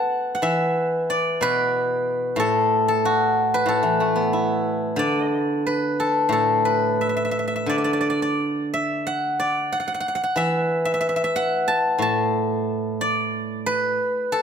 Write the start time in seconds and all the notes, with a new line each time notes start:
Already playing: A4 B4 F#5 A5
0.35 F#5
0.42 E3 E5
1.10 D5
1.41 B2 B4
2.36 A2 A4
2.88 A4
3.05 F#4
3.54 B4
3.66 A2 A4
3.83 E3
4.00 A3
4.16 B3
4.33 E4
4.96 D3 D5
5.67 B4
6.00 A4
6.29 A2 A4
6.65 B4
7.01 E5
7.09 E5
7.17 E5
7.25 E5
7.31 E5
7.39 E5
7.48 E5
7.56 E5
7.66 D3 D5
7.78 D5
7.84 D5
7.93 D5
8.01 D5
8.10 D5
8.22 D5
8.74 E5
9.07 F#5
9.40 D5
9.72 F#5
9.80 F#5
9.88 F#5
9.94 F#5
10.00 F#5
10.08 F#5
10.15 F#5
10.24 F#5
10.36 E3 E5
10.85 E5
10.94 E5
11.01 E5
11.09 E5
11.16 E5
11.24 E5
11.36 F#5
11.68 A5
11.99 A2 A5
13.01 D5
13.66 B4
14.32 A4